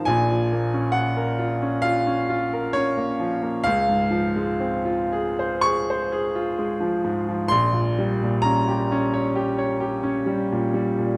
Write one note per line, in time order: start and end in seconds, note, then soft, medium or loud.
0.05 3.62 A#1 medium
0.05 3.62 A#2 medium
0.05 0.95 G#5 loud
0.30 0.65 F3 soft
0.53 0.87 A#3 soft
0.73 1.08 C#4 medium
0.92 1.30 F4 soft
0.92 1.81 F#5 medium
1.17 1.52 A#4 medium
1.39 1.74 F4 medium
1.62 1.97 C#4 medium
1.82 2.19 F4 medium
1.82 2.72 F5 loud
2.07 2.42 C#4 medium
2.29 2.65 F4 medium
2.53 2.88 A#4 medium
2.73 3.11 C#4 medium
2.73 3.65 C#5 loud
2.97 3.33 A#3 medium
3.20 3.56 F3 medium
3.42 3.65 A#3 soft
3.64 7.45 C#2 medium
3.64 5.62 F5 loud
3.89 4.26 G#2 medium
4.11 4.49 F3 medium
4.36 4.75 G#3 medium
4.60 5.01 C4 medium
4.85 5.27 F4 medium
5.12 5.54 G#4 medium
5.39 5.79 C5 medium
5.61 6.02 G#4 medium
5.61 7.48 C#6 loud
5.90 6.27 C5 medium
6.12 6.49 G#4 medium
6.35 6.72 F4 medium
6.59 6.95 G#3 medium
6.81 7.17 F3 medium
7.04 7.40 G#2 medium
7.29 7.50 F3 medium
7.48 11.17 A#1 medium
7.48 8.43 C6 loud
7.73 8.11 A#2 medium
7.99 8.35 G3 medium
8.23 8.59 A#2 medium
8.42 8.81 C#4 medium
8.42 11.17 A#5 loud
8.68 9.04 G4 medium
8.92 9.27 C#4 medium
9.14 9.50 C#5 medium
9.35 9.72 G4 medium
9.59 9.95 C#5 medium
9.80 10.18 G4 medium
10.03 10.42 C#4 medium
10.26 10.65 G3 medium
10.52 10.90 A#2 medium
10.74 11.13 G3 medium
10.99 11.17 A#2 medium